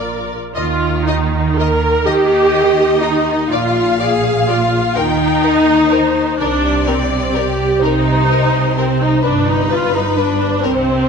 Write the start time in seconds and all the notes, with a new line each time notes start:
Already playing: A#1 F4 A#4 D5
0.56 D#2 D#3 F4 D#5
1.07 D#4 D#5
1.57 A#4 D#5
2.06 D#2 D#3 G4 D#5
2.54 D#5
3.02 D#4 D#5
3.50 A#1 A#2 F4 D5 F5
4.00 G#4 D5
4.48 F4 D5
4.96 D#2 D#3 D#4 A#4 G5
5.43 A#4 D#5
5.91 A#4 C5
6.38 C2 C3 D4 A#4 D5
6.87 C4 A#4
7.34 G4 A#4
7.81 C2 C3 D#4 A#4 C5
8.31 A#4
8.77 C4 A#4
9.02 D#4
9.24 G1 G2 D4 B4
9.48 D#4
9.70 F4 B4
9.95 D#4
10.16 D4 B4
10.63 C2 C3 C4 A#4 C5